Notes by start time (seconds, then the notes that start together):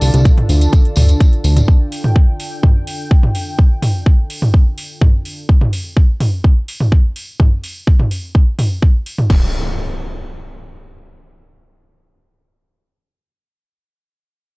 Already playing: D3 D4 F4 A4 A5
0.01 C2, open hi-hat, tambourine
0.14 C2, closed hi-hat, tambourine
0.25 kick, closed hi-hat, tambourine
0.38 closed hi-hat, mid tom
0.49 D2, open hi-hat, tambourine
0.61 closed hi-hat, tambourine
0.72 kick, closed hi-hat, tambourine
0.85 closed hi-hat
0.96 D2, mid tom, open hi-hat, tambourine
1.09 closed hi-hat, tambourine
1.20 kick, closed hi-hat, tambourine
1.33 closed hi-hat
1.44 D2, open hi-hat, tambourine
1.56 closed hi-hat, mid tom, tambourine
1.68 G5, kick
1.92 open hi-hat
2.04 mid tom
2.16 kick
2.40 open hi-hat
2.63 kick, mid tom
2.87 open hi-hat
3.11 kick
3.23 mid tom
3.35 open hi-hat
3.59 kick
3.82 mid tom, open hi-hat
4.06 kick
4.30 open hi-hat
4.42 mid tom
4.54 kick
4.78 open hi-hat
5.01 kick, mid tom
5.25 open hi-hat
5.49 kick
5.61 mid tom
5.73 open hi-hat
5.97 kick
6.21 mid tom, open hi-hat
6.44 kick
6.68 open hi-hat
6.80 mid tom
6.92 kick
7.16 open hi-hat
7.40 kick, mid tom
7.63 open hi-hat
7.87 kick
7.99 mid tom
8.11 open hi-hat
8.35 kick
8.59 mid tom, open hi-hat
8.82 kick
9.06 open hi-hat
9.18 mid tom
9.30 kick, crash, impact